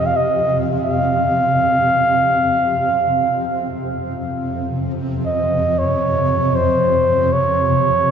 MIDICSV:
0, 0, Header, 1, 3, 480
1, 0, Start_track
1, 0, Tempo, 500000
1, 7786, End_track
2, 0, Start_track
2, 0, Title_t, "Flugelhorn"
2, 0, Program_c, 0, 56
2, 55, Note_on_c, 0, 77, 63
2, 157, Note_on_c, 0, 75, 68
2, 171, Note_off_c, 0, 77, 0
2, 564, Note_off_c, 0, 75, 0
2, 818, Note_on_c, 0, 77, 82
2, 3568, Note_off_c, 0, 77, 0
2, 5048, Note_on_c, 0, 75, 64
2, 5553, Note_on_c, 0, 73, 70
2, 5568, Note_off_c, 0, 75, 0
2, 6290, Note_on_c, 0, 72, 71
2, 6304, Note_off_c, 0, 73, 0
2, 7032, Note_on_c, 0, 73, 80
2, 7047, Note_off_c, 0, 72, 0
2, 7786, Note_off_c, 0, 73, 0
2, 7786, End_track
3, 0, Start_track
3, 0, Title_t, "Ambient pad"
3, 0, Program_c, 1, 92
3, 0, Note_on_c, 1, 41, 56
3, 0, Note_on_c, 1, 48, 59
3, 3155, Note_off_c, 1, 48, 0
3, 3158, Note_off_c, 1, 41, 0
3, 3167, Note_on_c, 1, 48, 62
3, 3170, Note_on_c, 1, 41, 63
3, 7786, Note_off_c, 1, 41, 0
3, 7786, Note_off_c, 1, 48, 0
3, 7786, End_track
0, 0, End_of_file